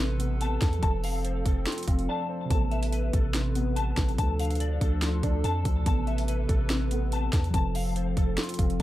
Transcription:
Already playing: 808-style bass A1, synth keys C3 B3 A4, analog synth pad C3 A4 B4, clean electric guitar C4 A4 B4 E5 A5
0.18 synth keys C3 B3, clean electric guitar B3, closed hi-hat
0.22 synth keys A4
0.41 clean electric guitar A5, closed hi-hat
0.62 808-style bass E2, kick, snare, closed hi-hat
0.73 closed hi-hat
0.78 synth keys F3, clean electric guitar A5
0.83 808-style bass F1, analog synth pad F3 C4, synth keys C4, kick, closed hi-hat
0.88 synth keys A4
1.04 clean electric guitar F5, open hi-hat
1.25 clean electric guitar C5, closed hi-hat
1.46 808-style bass F1, clean electric guitar A4, kick, closed hi-hat
1.67 clean electric guitar F4, snare, closed hi-hat
1.72 closed hi-hat
1.78 closed hi-hat
1.83 closed hi-hat
1.87 808-style bass F1, clean electric guitar C4, synth keys F5, kick, closed hi-hat
1.99 closed hi-hat
2.09 synth keys D5, clean electric guitar A5
2.29 synth keys C5
2.45 synth keys C3
2.50 808-style bass A1, analog synth pad C3 B4, synth keys B3, clean electric guitar A5, kick, closed hi-hat
2.55 synth keys A4
2.71 clean electric guitar E5, closed hi-hat
2.83 closed hi-hat
2.92 clean electric guitar B4, closed hi-hat
3.13 808-style bass A1, clean electric guitar A4, kick, closed hi-hat
3.34 clean electric guitar C4, snare, closed hi-hat
3.55 clean electric guitar B3, closed hi-hat
3.76 clean electric guitar A5, closed hi-hat
3.96 808-style bass A1, synth keys C3 B3, kick, snare, closed hi-hat
4.00 synth keys A4
4.09 closed hi-hat
4.14 synth keys F3
4.18 808-style bass D2, analog synth pad F3 D4 A4, synth keys D4, clean electric guitar A5, kick, closed hi-hat
4.23 synth keys A4
4.39 clean electric guitar F5, closed hi-hat, open hi-hat
4.45 closed hi-hat
4.50 closed hi-hat
4.55 closed hi-hat
4.60 clean electric guitar D5, closed hi-hat
4.81 808-style bass D2, clean electric guitar A4, kick, closed hi-hat
5.02 clean electric guitar F4, snare, closed hi-hat
5.23 808-style bass D2, clean electric guitar D4, synth keys D5, kick, closed hi-hat
5.44 808-style bass F2, clean electric guitar A5, synth keys A5, closed hi-hat
5.63 808-style bass D2, synth keys F3 D4, kick, closed hi-hat
5.67 synth keys A4
5.82 808-style bass A1, synth keys C3, analog synth pad C3 B4, kick, closed hi-hat
5.87 synth keys B3, clean electric guitar A5
5.91 synth keys A4
6.07 clean electric guitar E5, closed hi-hat
6.18 closed hi-hat
6.28 clean electric guitar B4, closed hi-hat
6.48 808-style bass A1, clean electric guitar A4, kick, closed hi-hat
6.69 clean electric guitar C4, snare, closed hi-hat
6.89 synth keys C3 B3, clean electric guitar B3, closed hi-hat
6.94 synth keys A4
7.12 clean electric guitar A5, closed hi-hat
7.33 808-style bass E2, kick, snare, closed hi-hat
7.44 closed hi-hat
7.50 synth keys F3, clean electric guitar A5
7.54 808-style bass F1, analog synth pad F3 C4 A4, synth keys C4, kick, closed hi-hat
7.59 synth keys A4
7.75 clean electric guitar F5, open hi-hat
7.96 clean electric guitar C5, closed hi-hat
8.17 808-style bass F1, clean electric guitar A4, kick, closed hi-hat
8.38 clean electric guitar F4, snare, closed hi-hat
8.43 closed hi-hat
8.49 closed hi-hat
8.54 closed hi-hat
8.58 808-style bass F1, clean electric guitar C4, synth keys F5, kick, closed hi-hat
8.70 closed hi-hat

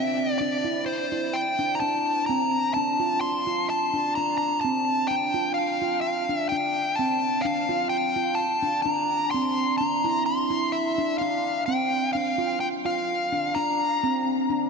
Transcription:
Already playing: handpan C4, lead electric guitar E5
0.38 handpan D4, lead electric guitar D5
0.65 handpan E4
0.86 lead electric guitar C5
1.12 handpan E4
1.33 lead electric guitar G5
1.59 handpan D4
1.75 lead electric guitar A#5
1.80 handpan D4, lead electric guitar A5
2.26 handpan C4, lead electric guitar A#5
2.74 handpan D4, lead electric guitar A5
3.00 handpan F4
3.21 lead electric guitar C6
3.47 handpan F4
3.70 lead electric guitar A5
3.94 handpan D4
4.15 handpan D4, lead electric guitar A#5
4.38 lead electric guitar A#5
4.61 handpan C4, lead electric guitar A5
5.08 handpan D4, lead electric guitar G5
5.34 handpan F4
5.54 lead electric guitar F5
5.82 handpan F4
6.01 lead electric guitar F5
6.29 handpan D4
6.38 lead electric guitar E5
6.49 handpan D4, lead electric guitar G5
6.96 handpan C4, lead electric guitar A5
7.42 handpan D4, lead electric guitar F5
7.69 handpan F4
7.89 lead electric guitar G5
8.16 handpan F4
8.35 lead electric guitar A5
8.63 handpan D4
8.82 handpan D4, lead electric guitar A#5
9.31 handpan C4, lead electric guitar C6
9.78 handpan D4, lead electric guitar A#5
10.05 handpan E4
10.26 lead electric guitar C6
10.50 handpan E4
10.72 lead electric guitar E5
10.98 handpan D4
11.18 handpan D4, lead electric guitar F5
11.66 handpan C4, lead electric guitar G5
12.13 handpan D4, lead electric guitar F5
12.38 handpan F4
12.60 lead electric guitar G5
12.85 handpan F4, lead electric guitar F5
13.33 handpan D4
13.55 handpan D4, lead electric guitar A#5
14.04 handpan C4
14.50 handpan D4

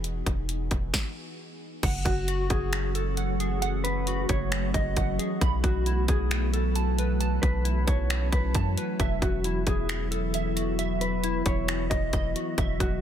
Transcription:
Already playing: 808-style bass E1, ambient pad E3 B3 D#4 F#4 G#4
0.04 closed hi-hat
0.26 808-style bass E1, kick, closed hi-hat
0.49 closed hi-hat
0.71 808-style bass E1, kick, closed hi-hat
0.94 kick, snare
1.83 808-style bass F#1, ambient pad E3 F#3 A3 C#4 F#4, synth keys F#5, kick, closed hi-hat, crash
2.05 808-style bass F#1, clean electric guitar F#4, kick, closed hi-hat
2.28 synth keys F#4, closed hi-hat
2.50 808-style bass F#1, clean electric guitar G#4, kick, closed hi-hat
2.73 finger snap, closed hi-hat
2.95 clean electric guitar A4, closed hi-hat
3.17 synth keys F#5, closed hi-hat
3.40 synth keys G#4, closed hi-hat
3.62 synth keys F#5, closed hi-hat
3.84 clean electric guitar B4, closed hi-hat
4.07 synth keys F#4, closed hi-hat
4.29 808-style bass F#1, clean electric guitar C#5, kick, closed hi-hat
4.52 finger snap, closed hi-hat
4.74 808-style bass F#1, clean electric guitar D#5, kick, closed hi-hat
4.96 808-style bass F#1, synth keys F#5, kick, closed hi-hat
5.19 synth keys G#4, closed hi-hat
5.41 808-style bass B1, ambient pad F#3 B3, synth keys B5, kick, closed hi-hat
5.64 808-style bass B1, clean electric guitar F#4, kick, closed hi-hat
5.86 synth keys E4, closed hi-hat
6.08 808-style bass B1, clean electric guitar G#4, kick, closed hi-hat
6.31 finger snap, closed hi-hat
6.53 clean electric guitar A4, closed hi-hat
6.76 synth keys A5, closed hi-hat
6.99 synth keys B4, closed hi-hat
7.20 ambient pad C#4, synth keys A5, closed hi-hat
7.42 808-style bass B1, clean electric guitar B4, kick, closed hi-hat
7.65 synth keys E4, closed hi-hat
7.87 808-style bass B1, clean electric guitar C#5, kick, closed hi-hat
8.10 finger snap, closed hi-hat
8.32 808-style bass B1, clean electric guitar B4, kick, closed hi-hat
8.55 808-style bass F#2, synth keys A5, kick, closed hi-hat
8.78 synth keys B4, closed hi-hat
9.00 808-style bass E1, ambient pad E3 B3 E4, synth keys E5, kick, closed hi-hat
9.22 808-style bass E1, clean electric guitar F#4, kick, closed hi-hat
9.44 synth keys E4, closed hi-hat
9.67 808-style bass E1, clean electric guitar G#4, kick, closed hi-hat
9.89 finger snap, closed hi-hat
10.11 clean electric guitar A4, closed hi-hat
10.34 synth keys E5, closed hi-hat
10.56 synth keys F#4, closed hi-hat
10.79 synth keys E5, closed hi-hat
11.01 clean electric guitar B4, closed hi-hat
11.24 synth keys E4, closed hi-hat
11.46 808-style bass E1, clean electric guitar C#5, kick, closed hi-hat
11.68 finger snap, closed hi-hat
11.90 808-style bass E1, clean electric guitar D#5, kick, closed hi-hat
12.13 808-style bass E1, synth keys D#5, kick, closed hi-hat
12.36 synth keys F#4, closed hi-hat
12.58 808-style bass E1, ambient pad E4, synth keys E5, kick, closed hi-hat
12.80 808-style bass E1, clean electric guitar F#4, kick, closed hi-hat

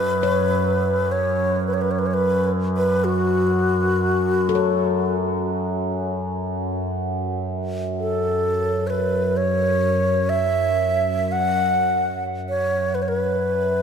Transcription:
Already playing: synth drone F#2, xiao B4
0.23 handpan C#5
1.12 xiao C#5
1.67 xiao B4
1.74 xiao C#5
1.81 xiao B4
1.91 xiao C#5
1.99 xiao B4
2.06 xiao C#5
2.14 xiao B4
2.77 xiao B4
3.04 xiao F#4
4.49 handpan A4
4.55 handpan C#5
8.00 xiao A4
8.87 xiao B4 C#5
9.37 xiao C#5
10.29 xiao E5
11.32 xiao F#5
11.61 synth drone F#2
12.49 xiao C#5
12.95 xiao B4
13.02 xiao C#5
13.08 xiao B4

